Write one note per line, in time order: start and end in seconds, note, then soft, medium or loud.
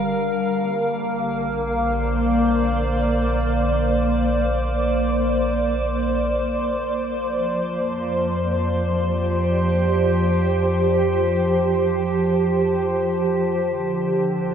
0.00 0.53 G1 medium
0.00 3.20 D3 medium
0.00 0.58 G3 medium
0.00 1.91 A#4 medium
0.00 3.19 F5 medium
0.58 7.08 A#1 medium
0.58 8.29 A#3 medium
1.70 14.54 C5 medium
1.87 9.75 D5 medium
7.12 13.62 F2 medium
7.12 13.68 F3 medium
8.97 14.54 G4 medium
13.67 14.54 D2 medium
13.67 14.54 D3 medium
14.21 14.54 D4 medium